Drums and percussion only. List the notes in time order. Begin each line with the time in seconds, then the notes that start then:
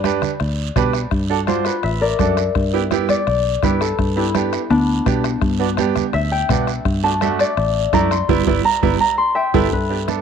0.04 bombo rim, high conga, short guiro
0.22 bombo rim, low conga, short guiro
0.40 bombo rim, long guiro
0.76 bombo low, bombo rim, high conga, low conga, short guiro
0.93 bombo rim, short guiro
1.11 bombo low, bombo rim, long guiro
1.47 bombo rim, high conga, short guiro
1.65 bombo rim, short guiro
1.83 bombo rim, long guiro
2.19 bombo low, bombo rim, high conga, short guiro
2.37 bombo rim, short guiro
2.55 bombo low, bombo rim, long guiro
2.91 bombo rim, high conga, short guiro
3.09 bombo rim, high conga, short guiro
3.27 bombo rim, long guiro
3.63 bombo low, bombo rim, high conga, low conga, short guiro
3.81 bombo rim, short guiro
3.99 bombo low, bombo rim, long guiro
4.35 bombo rim, high conga, short guiro
4.53 bombo rim, short guiro
4.71 bombo rim, long guiro
5.06 bombo low, bombo rim, high conga, short guiro
5.24 bombo rim, short guiro
5.42 bombo low, bombo rim, long guiro
5.77 bombo rim, high conga, short guiro
5.96 bombo rim, high conga, low conga, short guiro
6.13 bombo rim, long guiro
6.49 bombo low, bombo rim, high conga, low conga, short guiro
6.67 bombo rim, short guiro
6.85 bombo low, bombo rim, long guiro
7.21 bombo rim, high conga, short guiro
7.39 bombo rim, short guiro
7.57 bombo rim, long guiro
7.93 bombo low, bombo rim, high conga, short guiro
8.11 bombo rim, short guiro
8.29 bombo low, high conga, long guiro
8.47 bombo low, high conga, long guiro
8.83 bombo low, high conga, long guiro
9.54 bombo low, high conga, long guiro
9.72 bombo low, high conga, long guiro
10.08 bombo rim, high conga, short guiro